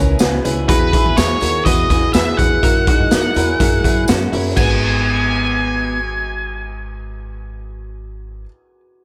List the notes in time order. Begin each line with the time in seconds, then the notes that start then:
Already playing: C#2 C#4 E4 A#4 B4 C#5
0.19 C#2 C#4 E4 F#4 G#4 B4, snare, closed hi-hat, tambourine
0.44 C#2 C#4 E4 G#4 B4, closed hi-hat, tambourine
0.67 E2 B3 E4 F#4 G#4 B4, kick, closed hi-hat, tambourine
0.93 E4 F#4 G#4 B4, kick, closed hi-hat, tambourine
1.06 E2
1.16 E2 E4 F#4 G#4 C#5, snare, closed hi-hat, tambourine
1.41 D#2 E4 F#4 G#4 A#4, closed hi-hat, tambourine
1.65 E2 E4 F#4 G#4 B4 D#5, kick, closed hi-hat, tambourine
1.89 E2 E4 F#4 G#4, kick, snare, closed hi-hat, tambourine
2.13 E2 E4 F#4 G#4 B4 E5, snare, closed hi-hat, tambourine
2.37 E2 E4 F#4 G#4 F#5, kick, closed hi-hat, tambourine
2.62 F#2 E4 F#4 A#4, kick, closed hi-hat, tambourine
2.87 D#4 E4 F#4 G#4, kick, closed hi-hat
3.00 F#2
3.11 F#2 E4 F#4 A#4, snare, closed hi-hat, tambourine
3.34 E2 E4 F#4 G#4 A#4, closed hi-hat, tambourine
3.60 F#2 E4 F#4 G#4 A#4, kick, closed hi-hat, tambourine
3.84 F#2 E4 F#4 G#4 A#4, kick, closed hi-hat, tambourine
4.08 F#2 C#4 E4 F#4 A#4, snare, closed hi-hat, tambourine
4.32 F#2 C#4 E4 F#4 A#4, open hi-hat, tambourine
4.54 G#1 B3 F#4 G#4 G#5, kick, crash, tambourine
4.60 B4